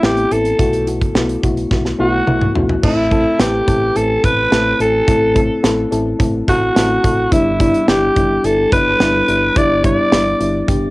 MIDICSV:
0, 0, Header, 1, 5, 480
1, 0, Start_track
1, 0, Tempo, 560748
1, 507, Time_signature, 4, 2, 24, 8
1, 9334, End_track
2, 0, Start_track
2, 0, Title_t, "Alto saxophone"
2, 0, Program_c, 0, 65
2, 39, Note_on_c, 0, 67, 89
2, 277, Note_on_c, 0, 69, 90
2, 290, Note_off_c, 0, 67, 0
2, 752, Note_off_c, 0, 69, 0
2, 1715, Note_on_c, 0, 66, 104
2, 2157, Note_off_c, 0, 66, 0
2, 2435, Note_on_c, 0, 64, 86
2, 2917, Note_on_c, 0, 67, 90
2, 2930, Note_off_c, 0, 64, 0
2, 3397, Note_on_c, 0, 69, 99
2, 3410, Note_off_c, 0, 67, 0
2, 3636, Note_on_c, 0, 71, 116
2, 3649, Note_off_c, 0, 69, 0
2, 4111, Note_off_c, 0, 71, 0
2, 4118, Note_on_c, 0, 69, 98
2, 5038, Note_off_c, 0, 69, 0
2, 5557, Note_on_c, 0, 66, 98
2, 6273, Note_on_c, 0, 64, 89
2, 6285, Note_off_c, 0, 66, 0
2, 6750, Note_off_c, 0, 64, 0
2, 6753, Note_on_c, 0, 67, 91
2, 7233, Note_on_c, 0, 69, 93
2, 7246, Note_off_c, 0, 67, 0
2, 7468, Note_off_c, 0, 69, 0
2, 7473, Note_on_c, 0, 71, 113
2, 8196, Note_on_c, 0, 74, 106
2, 8209, Note_off_c, 0, 71, 0
2, 8431, Note_off_c, 0, 74, 0
2, 8436, Note_on_c, 0, 74, 105
2, 9126, Note_off_c, 0, 74, 0
2, 9334, End_track
3, 0, Start_track
3, 0, Title_t, "FM electric piano"
3, 0, Program_c, 1, 5
3, 0, Control_c, 1, 64, 127
3, 0, Note_on_c, 1, 57, 88
3, 0, Note_on_c, 1, 59, 77
3, 0, Note_on_c, 1, 60, 82
3, 0, Note_on_c, 1, 64, 98
3, 21, Note_off_c, 1, 57, 0
3, 21, Note_on_c, 1, 57, 89
3, 24, Note_off_c, 1, 59, 0
3, 24, Note_on_c, 1, 59, 77
3, 28, Note_off_c, 1, 60, 0
3, 28, Note_on_c, 1, 60, 74
3, 31, Note_off_c, 1, 64, 0
3, 31, Note_on_c, 1, 64, 92
3, 226, Note_off_c, 1, 57, 0
3, 228, Note_off_c, 1, 59, 0
3, 230, Note_off_c, 1, 60, 0
3, 231, Note_off_c, 1, 64, 0
3, 261, Note_on_c, 1, 57, 67
3, 264, Note_on_c, 1, 59, 60
3, 268, Note_on_c, 1, 60, 61
3, 271, Note_on_c, 1, 64, 75
3, 466, Note_off_c, 1, 57, 0
3, 468, Note_off_c, 1, 59, 0
3, 470, Note_off_c, 1, 60, 0
3, 471, Note_off_c, 1, 64, 0
3, 500, Note_on_c, 1, 57, 84
3, 503, Note_on_c, 1, 59, 78
3, 507, Note_on_c, 1, 64, 80
3, 511, Note_on_c, 1, 66, 97
3, 520, Control_c, 1, 64, 0
3, 652, Control_c, 1, 64, 127
3, 706, Note_off_c, 1, 57, 0
3, 707, Note_off_c, 1, 59, 0
3, 709, Note_off_c, 1, 64, 0
3, 711, Note_off_c, 1, 66, 0
3, 741, Note_on_c, 1, 57, 70
3, 745, Note_on_c, 1, 59, 61
3, 748, Note_on_c, 1, 64, 58
3, 751, Note_on_c, 1, 66, 75
3, 946, Note_off_c, 1, 57, 0
3, 948, Note_off_c, 1, 59, 0
3, 950, Note_off_c, 1, 64, 0
3, 952, Note_off_c, 1, 66, 0
3, 981, Note_on_c, 1, 57, 78
3, 985, Note_on_c, 1, 59, 78
3, 989, Note_on_c, 1, 64, 75
3, 992, Note_on_c, 1, 66, 85
3, 1187, Note_off_c, 1, 57, 0
3, 1188, Note_off_c, 1, 59, 0
3, 1190, Note_off_c, 1, 64, 0
3, 1192, Note_off_c, 1, 66, 0
3, 1222, Note_on_c, 1, 57, 82
3, 1226, Note_on_c, 1, 59, 75
3, 1229, Note_on_c, 1, 64, 78
3, 1232, Note_on_c, 1, 66, 90
3, 1427, Note_off_c, 1, 57, 0
3, 1429, Note_off_c, 1, 59, 0
3, 1430, Note_off_c, 1, 64, 0
3, 1432, Note_off_c, 1, 66, 0
3, 1463, Note_on_c, 1, 57, 82
3, 1466, Note_on_c, 1, 59, 71
3, 1469, Note_on_c, 1, 64, 69
3, 1473, Note_on_c, 1, 66, 84
3, 1667, Note_off_c, 1, 57, 0
3, 1669, Note_off_c, 1, 59, 0
3, 1670, Note_off_c, 1, 64, 0
3, 1672, Note_off_c, 1, 66, 0
3, 1701, Note_on_c, 1, 57, 105
3, 1704, Note_on_c, 1, 59, 91
3, 1709, Note_on_c, 1, 64, 92
3, 1711, Note_on_c, 1, 66, 116
3, 1906, Note_off_c, 1, 57, 0
3, 1908, Note_off_c, 1, 59, 0
3, 1910, Note_off_c, 1, 64, 0
3, 1912, Note_off_c, 1, 66, 0
3, 1941, Note_on_c, 1, 57, 93
3, 1943, Note_on_c, 1, 59, 88
3, 1947, Note_on_c, 1, 64, 92
3, 1950, Note_on_c, 1, 66, 109
3, 2146, Note_off_c, 1, 57, 0
3, 2148, Note_off_c, 1, 59, 0
3, 2150, Note_off_c, 1, 64, 0
3, 2151, Note_off_c, 1, 66, 0
3, 2180, Note_on_c, 1, 57, 82
3, 2183, Note_on_c, 1, 59, 72
3, 2187, Note_on_c, 1, 64, 71
3, 2191, Note_on_c, 1, 66, 91
3, 2386, Note_off_c, 1, 57, 0
3, 2387, Note_off_c, 1, 59, 0
3, 2389, Note_off_c, 1, 64, 0
3, 2391, Note_off_c, 1, 66, 0
3, 2419, Note_on_c, 1, 57, 89
3, 2424, Note_on_c, 1, 60, 81
3, 2427, Note_on_c, 1, 64, 81
3, 2430, Note_on_c, 1, 69, 95
3, 2436, Control_c, 1, 64, 0
3, 2594, Control_c, 1, 64, 127
3, 2625, Note_off_c, 1, 57, 0
3, 2628, Note_off_c, 1, 60, 0
3, 2629, Note_off_c, 1, 64, 0
3, 2631, Note_off_c, 1, 69, 0
3, 2660, Note_on_c, 1, 57, 88
3, 2664, Note_on_c, 1, 60, 80
3, 2667, Note_on_c, 1, 64, 82
3, 2670, Note_on_c, 1, 69, 98
3, 2866, Note_off_c, 1, 57, 0
3, 2868, Note_off_c, 1, 60, 0
3, 2869, Note_off_c, 1, 64, 0
3, 2871, Note_off_c, 1, 69, 0
3, 2899, Note_on_c, 1, 57, 67
3, 2901, Note_on_c, 1, 60, 65
3, 2905, Note_on_c, 1, 64, 62
3, 2909, Note_on_c, 1, 71, 76
3, 3105, Note_off_c, 1, 57, 0
3, 3107, Note_off_c, 1, 60, 0
3, 3108, Note_off_c, 1, 64, 0
3, 3110, Note_off_c, 1, 71, 0
3, 3140, Note_on_c, 1, 57, 68
3, 3143, Note_on_c, 1, 60, 65
3, 3147, Note_on_c, 1, 64, 62
3, 3151, Note_on_c, 1, 69, 77
3, 3346, Note_off_c, 1, 57, 0
3, 3347, Note_off_c, 1, 60, 0
3, 3349, Note_off_c, 1, 64, 0
3, 3351, Note_off_c, 1, 69, 0
3, 3378, Note_on_c, 1, 57, 69
3, 3382, Note_on_c, 1, 60, 64
3, 3385, Note_on_c, 1, 64, 63
3, 3388, Note_on_c, 1, 69, 76
3, 3585, Note_off_c, 1, 57, 0
3, 3587, Note_off_c, 1, 60, 0
3, 3588, Note_off_c, 1, 64, 0
3, 3590, Note_off_c, 1, 69, 0
3, 3619, Note_on_c, 1, 57, 70
3, 3622, Note_on_c, 1, 60, 67
3, 3626, Note_on_c, 1, 64, 62
3, 3629, Note_on_c, 1, 69, 74
3, 3825, Note_off_c, 1, 57, 0
3, 3827, Note_off_c, 1, 60, 0
3, 3829, Note_off_c, 1, 64, 0
3, 3830, Note_off_c, 1, 69, 0
3, 3859, Note_on_c, 1, 57, 89
3, 3862, Note_on_c, 1, 60, 82
3, 3866, Note_on_c, 1, 64, 77
3, 3869, Note_on_c, 1, 69, 96
3, 4065, Note_off_c, 1, 57, 0
3, 4067, Note_off_c, 1, 60, 0
3, 4069, Note_off_c, 1, 64, 0
3, 4070, Note_off_c, 1, 69, 0
3, 4099, Note_on_c, 1, 57, 69
3, 4103, Note_on_c, 1, 60, 64
3, 4106, Note_on_c, 1, 64, 61
3, 4109, Note_on_c, 1, 69, 77
3, 4306, Note_off_c, 1, 57, 0
3, 4307, Note_off_c, 1, 60, 0
3, 4309, Note_off_c, 1, 64, 0
3, 4310, Note_off_c, 1, 69, 0
3, 4339, Note_on_c, 1, 57, 88
3, 4342, Note_on_c, 1, 60, 80
3, 4346, Note_on_c, 1, 64, 85
3, 4350, Note_on_c, 1, 69, 98
3, 4546, Note_off_c, 1, 57, 0
3, 4547, Note_off_c, 1, 60, 0
3, 4549, Note_off_c, 1, 64, 0
3, 4551, Note_off_c, 1, 69, 0
3, 4578, Note_on_c, 1, 57, 88
3, 4581, Note_on_c, 1, 60, 83
3, 4585, Note_on_c, 1, 64, 77
3, 4589, Note_on_c, 1, 69, 99
3, 4785, Note_off_c, 1, 57, 0
3, 4786, Note_off_c, 1, 60, 0
3, 4788, Note_off_c, 1, 64, 0
3, 4790, Note_off_c, 1, 69, 0
3, 4818, Note_on_c, 1, 57, 83
3, 4822, Note_on_c, 1, 60, 76
3, 4825, Note_on_c, 1, 64, 76
3, 4829, Note_on_c, 1, 69, 92
3, 5025, Note_off_c, 1, 57, 0
3, 5027, Note_off_c, 1, 60, 0
3, 5028, Note_off_c, 1, 64, 0
3, 5030, Note_off_c, 1, 69, 0
3, 5059, Note_on_c, 1, 57, 82
3, 5062, Note_on_c, 1, 60, 75
3, 5066, Note_on_c, 1, 64, 78
3, 5069, Note_on_c, 1, 69, 96
3, 5265, Note_off_c, 1, 57, 0
3, 5267, Note_off_c, 1, 60, 0
3, 5269, Note_off_c, 1, 64, 0
3, 5270, Note_off_c, 1, 69, 0
3, 5298, Note_on_c, 1, 57, 83
3, 5301, Note_on_c, 1, 60, 78
3, 5306, Note_on_c, 1, 64, 76
3, 5309, Note_on_c, 1, 69, 88
3, 5505, Note_off_c, 1, 57, 0
3, 5506, Note_off_c, 1, 60, 0
3, 5509, Note_off_c, 1, 64, 0
3, 5510, Note_off_c, 1, 69, 0
3, 5540, Note_on_c, 1, 57, 71
3, 5544, Note_on_c, 1, 60, 66
3, 5546, Note_on_c, 1, 64, 66
3, 5551, Note_on_c, 1, 69, 80
3, 5746, Note_off_c, 1, 57, 0
3, 5748, Note_off_c, 1, 60, 0
3, 5749, Note_off_c, 1, 64, 0
3, 5751, Note_off_c, 1, 69, 0
3, 5780, Note_on_c, 1, 57, 90
3, 5783, Note_on_c, 1, 60, 77
3, 5787, Note_on_c, 1, 64, 80
3, 5791, Note_on_c, 1, 69, 95
3, 5986, Note_off_c, 1, 57, 0
3, 5988, Note_off_c, 1, 60, 0
3, 5989, Note_off_c, 1, 64, 0
3, 5991, Note_off_c, 1, 69, 0
3, 6020, Note_on_c, 1, 57, 70
3, 6023, Note_on_c, 1, 60, 62
3, 6027, Note_on_c, 1, 64, 64
3, 6030, Note_on_c, 1, 69, 79
3, 6226, Note_off_c, 1, 57, 0
3, 6227, Note_off_c, 1, 60, 0
3, 6229, Note_off_c, 1, 64, 0
3, 6231, Note_off_c, 1, 69, 0
3, 6261, Note_on_c, 1, 55, 90
3, 6264, Note_on_c, 1, 59, 82
3, 6267, Note_on_c, 1, 62, 81
3, 6271, Note_on_c, 1, 64, 102
3, 6276, Control_c, 1, 64, 0
3, 6408, Control_c, 1, 64, 127
3, 6466, Note_off_c, 1, 55, 0
3, 6468, Note_off_c, 1, 59, 0
3, 6470, Note_off_c, 1, 62, 0
3, 6471, Note_off_c, 1, 64, 0
3, 6501, Note_on_c, 1, 55, 89
3, 6505, Note_on_c, 1, 59, 83
3, 6507, Note_on_c, 1, 62, 83
3, 6511, Note_on_c, 1, 64, 100
3, 6706, Note_off_c, 1, 55, 0
3, 6708, Note_off_c, 1, 59, 0
3, 6709, Note_off_c, 1, 62, 0
3, 6711, Note_off_c, 1, 64, 0
3, 6740, Note_on_c, 1, 55, 68
3, 6743, Note_on_c, 1, 59, 65
3, 6747, Note_on_c, 1, 62, 68
3, 6750, Note_on_c, 1, 64, 78
3, 6946, Note_off_c, 1, 55, 0
3, 6947, Note_off_c, 1, 59, 0
3, 6949, Note_off_c, 1, 62, 0
3, 6951, Note_off_c, 1, 64, 0
3, 6980, Note_on_c, 1, 55, 76
3, 6983, Note_on_c, 1, 59, 67
3, 6988, Note_on_c, 1, 62, 67
3, 6990, Note_on_c, 1, 64, 76
3, 7186, Note_off_c, 1, 55, 0
3, 7187, Note_off_c, 1, 59, 0
3, 7190, Note_off_c, 1, 62, 0
3, 7191, Note_off_c, 1, 64, 0
3, 7221, Note_on_c, 1, 55, 69
3, 7224, Note_on_c, 1, 59, 62
3, 7227, Note_on_c, 1, 62, 61
3, 7231, Note_on_c, 1, 64, 81
3, 7426, Note_off_c, 1, 55, 0
3, 7428, Note_off_c, 1, 59, 0
3, 7430, Note_off_c, 1, 62, 0
3, 7431, Note_off_c, 1, 64, 0
3, 7461, Note_on_c, 1, 55, 69
3, 7464, Note_on_c, 1, 59, 68
3, 7468, Note_on_c, 1, 62, 69
3, 7472, Note_on_c, 1, 64, 78
3, 7667, Note_off_c, 1, 55, 0
3, 7668, Note_off_c, 1, 59, 0
3, 7670, Note_off_c, 1, 62, 0
3, 7672, Note_off_c, 1, 64, 0
3, 7702, Note_on_c, 1, 55, 83
3, 7706, Note_on_c, 1, 59, 75
3, 7708, Note_on_c, 1, 62, 78
3, 7712, Note_on_c, 1, 64, 99
3, 7907, Note_off_c, 1, 55, 0
3, 7909, Note_off_c, 1, 59, 0
3, 7910, Note_off_c, 1, 62, 0
3, 7912, Note_off_c, 1, 64, 0
3, 7940, Note_on_c, 1, 55, 70
3, 7943, Note_on_c, 1, 59, 66
3, 7948, Note_on_c, 1, 62, 64
3, 7950, Note_on_c, 1, 64, 76
3, 8146, Note_off_c, 1, 55, 0
3, 8148, Note_off_c, 1, 59, 0
3, 8150, Note_off_c, 1, 62, 0
3, 8151, Note_off_c, 1, 64, 0
3, 8181, Note_on_c, 1, 55, 92
3, 8184, Note_on_c, 1, 59, 78
3, 8187, Note_on_c, 1, 62, 84
3, 8191, Note_on_c, 1, 64, 99
3, 8386, Note_off_c, 1, 55, 0
3, 8388, Note_off_c, 1, 59, 0
3, 8390, Note_off_c, 1, 62, 0
3, 8391, Note_off_c, 1, 64, 0
3, 8418, Note_on_c, 1, 55, 88
3, 8421, Note_on_c, 1, 59, 85
3, 8425, Note_on_c, 1, 62, 78
3, 8428, Note_on_c, 1, 64, 96
3, 8625, Note_off_c, 1, 55, 0
3, 8626, Note_off_c, 1, 59, 0
3, 8628, Note_off_c, 1, 62, 0
3, 8630, Note_off_c, 1, 64, 0
3, 8659, Note_on_c, 1, 55, 67
3, 8663, Note_on_c, 1, 59, 65
3, 8667, Note_on_c, 1, 62, 62
3, 8670, Note_on_c, 1, 64, 79
3, 8865, Note_off_c, 1, 55, 0
3, 8867, Note_off_c, 1, 59, 0
3, 8869, Note_off_c, 1, 62, 0
3, 8871, Note_off_c, 1, 64, 0
3, 8897, Note_on_c, 1, 55, 72
3, 8900, Note_on_c, 1, 59, 66
3, 8905, Note_on_c, 1, 62, 68
3, 8907, Note_on_c, 1, 64, 74
3, 9105, Note_off_c, 1, 55, 0
3, 9106, Note_off_c, 1, 59, 0
3, 9108, Note_off_c, 1, 62, 0
3, 9110, Note_off_c, 1, 64, 0
3, 9138, Note_on_c, 1, 55, 83
3, 9142, Note_on_c, 1, 59, 73
3, 9146, Note_on_c, 1, 62, 74
3, 9148, Note_on_c, 1, 67, 88
3, 9334, Note_off_c, 1, 55, 0
3, 9334, Note_off_c, 1, 59, 0
3, 9334, Note_off_c, 1, 62, 0
3, 9334, Note_off_c, 1, 67, 0
3, 9334, End_track
4, 0, Start_track
4, 0, Title_t, "Fingered electric bass"
4, 0, Program_c, 2, 33
4, 26, Note_on_c, 2, 33, 93
4, 199, Note_off_c, 2, 33, 0
4, 268, Note_on_c, 2, 33, 90
4, 440, Note_off_c, 2, 33, 0
4, 506, Note_on_c, 2, 35, 88
4, 852, Note_off_c, 2, 35, 0
4, 986, Note_on_c, 2, 35, 95
4, 1159, Note_off_c, 2, 35, 0
4, 1228, Note_on_c, 2, 35, 94
4, 1400, Note_off_c, 2, 35, 0
4, 1465, Note_on_c, 2, 35, 91
4, 1638, Note_off_c, 2, 35, 0
4, 1708, Note_on_c, 2, 35, 80
4, 1881, Note_off_c, 2, 35, 0
4, 1947, Note_on_c, 2, 35, 85
4, 2120, Note_off_c, 2, 35, 0
4, 2187, Note_on_c, 2, 35, 82
4, 2360, Note_off_c, 2, 35, 0
4, 2426, Note_on_c, 2, 33, 90
4, 2772, Note_off_c, 2, 33, 0
4, 2905, Note_on_c, 2, 33, 92
4, 3078, Note_off_c, 2, 33, 0
4, 3149, Note_on_c, 2, 33, 94
4, 3321, Note_off_c, 2, 33, 0
4, 3388, Note_on_c, 2, 33, 89
4, 3560, Note_off_c, 2, 33, 0
4, 3628, Note_on_c, 2, 33, 83
4, 3800, Note_off_c, 2, 33, 0
4, 3866, Note_on_c, 2, 33, 88
4, 4039, Note_off_c, 2, 33, 0
4, 4105, Note_on_c, 2, 33, 95
4, 4279, Note_off_c, 2, 33, 0
4, 4346, Note_on_c, 2, 33, 95
4, 4692, Note_off_c, 2, 33, 0
4, 4828, Note_on_c, 2, 33, 86
4, 5000, Note_off_c, 2, 33, 0
4, 5067, Note_on_c, 2, 33, 91
4, 5240, Note_off_c, 2, 33, 0
4, 5305, Note_on_c, 2, 33, 96
4, 5478, Note_off_c, 2, 33, 0
4, 5547, Note_on_c, 2, 33, 80
4, 5720, Note_off_c, 2, 33, 0
4, 5786, Note_on_c, 2, 33, 82
4, 5959, Note_off_c, 2, 33, 0
4, 6027, Note_on_c, 2, 33, 89
4, 6200, Note_off_c, 2, 33, 0
4, 6267, Note_on_c, 2, 31, 92
4, 6612, Note_off_c, 2, 31, 0
4, 6745, Note_on_c, 2, 31, 87
4, 6919, Note_off_c, 2, 31, 0
4, 6988, Note_on_c, 2, 31, 93
4, 7160, Note_off_c, 2, 31, 0
4, 7226, Note_on_c, 2, 31, 88
4, 7399, Note_off_c, 2, 31, 0
4, 7466, Note_on_c, 2, 31, 84
4, 7639, Note_off_c, 2, 31, 0
4, 7705, Note_on_c, 2, 31, 97
4, 7879, Note_off_c, 2, 31, 0
4, 7946, Note_on_c, 2, 31, 85
4, 8119, Note_off_c, 2, 31, 0
4, 8185, Note_on_c, 2, 31, 94
4, 8531, Note_off_c, 2, 31, 0
4, 8665, Note_on_c, 2, 31, 92
4, 8839, Note_off_c, 2, 31, 0
4, 8903, Note_on_c, 2, 31, 97
4, 9077, Note_off_c, 2, 31, 0
4, 9143, Note_on_c, 2, 31, 97
4, 9317, Note_off_c, 2, 31, 0
4, 9334, End_track
5, 0, Start_track
5, 0, Title_t, "Drums"
5, 28, Note_on_c, 9, 38, 99
5, 113, Note_off_c, 9, 38, 0
5, 146, Note_on_c, 9, 42, 45
5, 231, Note_off_c, 9, 42, 0
5, 268, Note_on_c, 9, 42, 62
5, 354, Note_off_c, 9, 42, 0
5, 385, Note_on_c, 9, 42, 48
5, 470, Note_off_c, 9, 42, 0
5, 505, Note_on_c, 9, 42, 87
5, 506, Note_on_c, 9, 36, 100
5, 591, Note_off_c, 9, 42, 0
5, 592, Note_off_c, 9, 36, 0
5, 625, Note_on_c, 9, 42, 50
5, 711, Note_off_c, 9, 42, 0
5, 746, Note_on_c, 9, 42, 65
5, 831, Note_off_c, 9, 42, 0
5, 868, Note_on_c, 9, 36, 73
5, 868, Note_on_c, 9, 42, 45
5, 953, Note_off_c, 9, 42, 0
5, 954, Note_off_c, 9, 36, 0
5, 986, Note_on_c, 9, 38, 112
5, 1072, Note_off_c, 9, 38, 0
5, 1106, Note_on_c, 9, 42, 51
5, 1192, Note_off_c, 9, 42, 0
5, 1228, Note_on_c, 9, 36, 80
5, 1228, Note_on_c, 9, 42, 61
5, 1314, Note_off_c, 9, 36, 0
5, 1314, Note_off_c, 9, 42, 0
5, 1347, Note_on_c, 9, 42, 45
5, 1432, Note_off_c, 9, 42, 0
5, 1465, Note_on_c, 9, 36, 88
5, 1467, Note_on_c, 9, 38, 51
5, 1550, Note_off_c, 9, 36, 0
5, 1552, Note_off_c, 9, 38, 0
5, 1586, Note_on_c, 9, 38, 46
5, 1672, Note_off_c, 9, 38, 0
5, 1946, Note_on_c, 9, 47, 73
5, 2032, Note_off_c, 9, 47, 0
5, 2067, Note_on_c, 9, 45, 65
5, 2152, Note_off_c, 9, 45, 0
5, 2187, Note_on_c, 9, 43, 84
5, 2272, Note_off_c, 9, 43, 0
5, 2306, Note_on_c, 9, 43, 77
5, 2392, Note_off_c, 9, 43, 0
5, 2427, Note_on_c, 9, 36, 100
5, 2427, Note_on_c, 9, 49, 85
5, 2512, Note_off_c, 9, 36, 0
5, 2513, Note_off_c, 9, 49, 0
5, 2666, Note_on_c, 9, 36, 82
5, 2666, Note_on_c, 9, 42, 62
5, 2752, Note_off_c, 9, 36, 0
5, 2752, Note_off_c, 9, 42, 0
5, 2907, Note_on_c, 9, 38, 109
5, 2909, Note_on_c, 9, 42, 92
5, 2992, Note_off_c, 9, 38, 0
5, 2994, Note_off_c, 9, 42, 0
5, 3149, Note_on_c, 9, 36, 83
5, 3149, Note_on_c, 9, 42, 60
5, 3234, Note_off_c, 9, 36, 0
5, 3235, Note_off_c, 9, 42, 0
5, 3387, Note_on_c, 9, 42, 74
5, 3472, Note_off_c, 9, 42, 0
5, 3627, Note_on_c, 9, 36, 89
5, 3627, Note_on_c, 9, 42, 76
5, 3712, Note_off_c, 9, 42, 0
5, 3713, Note_off_c, 9, 36, 0
5, 3869, Note_on_c, 9, 38, 96
5, 3870, Note_on_c, 9, 42, 85
5, 3954, Note_off_c, 9, 38, 0
5, 3955, Note_off_c, 9, 42, 0
5, 4110, Note_on_c, 9, 42, 61
5, 4195, Note_off_c, 9, 42, 0
5, 4347, Note_on_c, 9, 36, 110
5, 4347, Note_on_c, 9, 42, 88
5, 4432, Note_off_c, 9, 36, 0
5, 4432, Note_off_c, 9, 42, 0
5, 4587, Note_on_c, 9, 36, 84
5, 4587, Note_on_c, 9, 42, 62
5, 4672, Note_off_c, 9, 36, 0
5, 4673, Note_off_c, 9, 42, 0
5, 4827, Note_on_c, 9, 38, 110
5, 4829, Note_on_c, 9, 42, 93
5, 4913, Note_off_c, 9, 38, 0
5, 4915, Note_off_c, 9, 42, 0
5, 5069, Note_on_c, 9, 42, 61
5, 5155, Note_off_c, 9, 42, 0
5, 5305, Note_on_c, 9, 36, 93
5, 5307, Note_on_c, 9, 42, 77
5, 5391, Note_off_c, 9, 36, 0
5, 5393, Note_off_c, 9, 42, 0
5, 5547, Note_on_c, 9, 36, 89
5, 5547, Note_on_c, 9, 42, 73
5, 5633, Note_off_c, 9, 36, 0
5, 5633, Note_off_c, 9, 42, 0
5, 5789, Note_on_c, 9, 38, 94
5, 5790, Note_on_c, 9, 42, 85
5, 5874, Note_off_c, 9, 38, 0
5, 5875, Note_off_c, 9, 42, 0
5, 6028, Note_on_c, 9, 36, 87
5, 6029, Note_on_c, 9, 42, 65
5, 6114, Note_off_c, 9, 36, 0
5, 6115, Note_off_c, 9, 42, 0
5, 6266, Note_on_c, 9, 36, 104
5, 6267, Note_on_c, 9, 42, 91
5, 6352, Note_off_c, 9, 36, 0
5, 6352, Note_off_c, 9, 42, 0
5, 6506, Note_on_c, 9, 36, 83
5, 6506, Note_on_c, 9, 42, 65
5, 6592, Note_off_c, 9, 36, 0
5, 6592, Note_off_c, 9, 42, 0
5, 6628, Note_on_c, 9, 42, 46
5, 6714, Note_off_c, 9, 42, 0
5, 6747, Note_on_c, 9, 38, 111
5, 6749, Note_on_c, 9, 42, 90
5, 6833, Note_off_c, 9, 38, 0
5, 6835, Note_off_c, 9, 42, 0
5, 6988, Note_on_c, 9, 36, 80
5, 6989, Note_on_c, 9, 42, 60
5, 7074, Note_off_c, 9, 36, 0
5, 7074, Note_off_c, 9, 42, 0
5, 7227, Note_on_c, 9, 42, 81
5, 7313, Note_off_c, 9, 42, 0
5, 7465, Note_on_c, 9, 42, 78
5, 7466, Note_on_c, 9, 36, 90
5, 7550, Note_off_c, 9, 42, 0
5, 7552, Note_off_c, 9, 36, 0
5, 7707, Note_on_c, 9, 38, 98
5, 7708, Note_on_c, 9, 42, 86
5, 7792, Note_off_c, 9, 38, 0
5, 7793, Note_off_c, 9, 42, 0
5, 7947, Note_on_c, 9, 42, 68
5, 8032, Note_off_c, 9, 42, 0
5, 8184, Note_on_c, 9, 42, 91
5, 8185, Note_on_c, 9, 36, 109
5, 8270, Note_off_c, 9, 42, 0
5, 8271, Note_off_c, 9, 36, 0
5, 8425, Note_on_c, 9, 36, 85
5, 8425, Note_on_c, 9, 42, 64
5, 8510, Note_off_c, 9, 42, 0
5, 8511, Note_off_c, 9, 36, 0
5, 8665, Note_on_c, 9, 38, 112
5, 8667, Note_on_c, 9, 42, 91
5, 8751, Note_off_c, 9, 38, 0
5, 8753, Note_off_c, 9, 42, 0
5, 8907, Note_on_c, 9, 42, 63
5, 8993, Note_off_c, 9, 42, 0
5, 9144, Note_on_c, 9, 36, 85
5, 9146, Note_on_c, 9, 42, 75
5, 9230, Note_off_c, 9, 36, 0
5, 9232, Note_off_c, 9, 42, 0
5, 9334, End_track
0, 0, End_of_file